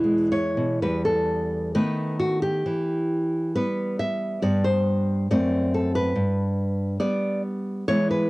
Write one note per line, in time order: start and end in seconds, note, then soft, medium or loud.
0.00 0.57 E2 soft
0.00 0.31 B2 soft
0.00 0.30 E3 soft
0.00 0.82 G#3 soft
0.00 0.29 E4 medium
0.32 0.83 E3 soft
0.32 0.81 C#5 medium
0.57 0.82 B2 soft
0.82 1.73 E2 medium
0.82 1.71 G3 soft
0.82 1.71 B3 soft
0.82 1.04 B4 medium
1.05 1.72 A4 medium
1.75 2.63 D#3 medium
1.75 2.62 A3 soft
1.75 2.62 B3 soft
1.75 2.18 B4 medium
2.19 2.42 F#4 medium
2.42 3.51 G4 medium
2.66 3.53 E3 medium
3.55 4.39 G3 soft
3.55 4.39 B3 soft
3.55 3.97 B4 medium
3.99 4.41 E5 medium
4.42 5.28 G2 medium
4.42 5.26 G3 soft
4.42 5.26 B3 soft
4.42 4.64 D5 medium
4.64 5.28 C5 medium
5.31 6.13 F#2 medium
5.31 6.12 A3 soft
5.31 6.12 C4 soft
5.31 5.72 D5 medium
5.74 5.95 A4 medium
5.95 6.95 B4 medium
6.16 6.97 G2 soft
7.00 7.84 G3 soft
7.00 7.84 B3 medium
7.00 7.41 D5 medium
7.88 8.30 E3 medium
7.88 8.30 G#3 soft
7.88 8.30 B3 soft
7.88 8.10 C#5 loud
8.11 8.30 B4 medium